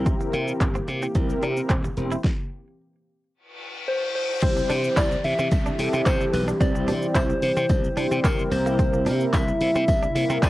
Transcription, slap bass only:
Already playing: C2
0.33 C3
0.61 G1
0.88 C3
1.15 C2
1.43 C3
1.70 D#1
1.97 E1
4.43 C2
4.70 C3
4.97 C2
5.24 C3
5.39 C3
5.52 C2
5.79 C3
5.94 C3
6.06 C3
6.33 B1
6.61 C2
6.88 C3
7.15 C2
7.43 C3
7.57 C3
7.70 C2
7.97 C3
8.12 C3
8.24 C3
8.51 C2
9.06 C3
9.33 C2
9.61 C3
9.75 C3
9.88 C2
10.15 C3
10.30 C3
10.43 C3

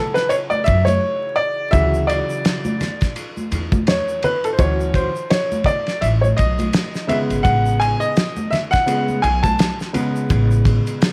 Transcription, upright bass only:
0.68 F#2
1.73 D2
3.51 E2
4.59 D2
6.02 A1
6.39 B1
7.30 G#1
7.45 A1
9.23 B1
10.30 A1

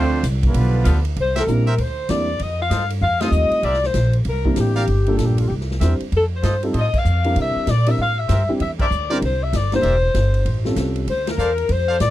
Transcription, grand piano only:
1.48 G3 A#3 C4 D4 E4
2.09 G3 A#3 C4 D4 E4
3.21 G3 A3 C4 D#4 F4
4.45 G3 A#3 C4 D4 E4
5.08 G3 A#3 D4 F4 A4
5.81 G3 C4 D4 E4 C5
6.63 G3 C4 D#4 F4 A4
7.25 G3 C4 D4 E4 A#4
7.87 G3 C4 D4 E4 A#4
8.49 G3 C4 D4 E4 G4
9.10 G3 C4 D4 E4 A#4
9.72 G3 A#3 D4 E4 A#4
10.65 G3 C4 C#4 F4 A4

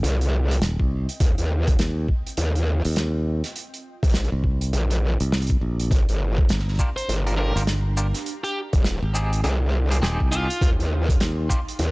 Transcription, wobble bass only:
0.03 C2
1.20 D#2
1.38 D#2
2.38 D#2
4.03 A#1
4.73 A#1
5.91 G1
6.09 G1
7.09 G1
8.73 D#1
9.44 C2
10.62 D#2
10.79 D#2
11.79 D#2

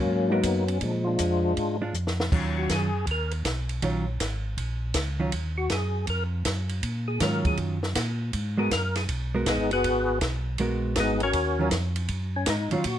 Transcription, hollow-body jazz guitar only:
0.32 G#3 B3 F#4 A#4
1.82 G#3 D4 F4
2.32 D#3 F#3 C#4 F4
3.83 D#3 F#3 C#4 F4
5.20 D#3 F#3 C#4 F4
7.21 D#3 F#3 C#4 F4
8.58 G#3 B3 F#4 A#4
9.35 G#3 B3 F#4 A#4
10.60 G#3 B3 F#4 A#4
11.59 D#3 F#3 C#4 F4
12.72 D#3 F#3 C#4 F4

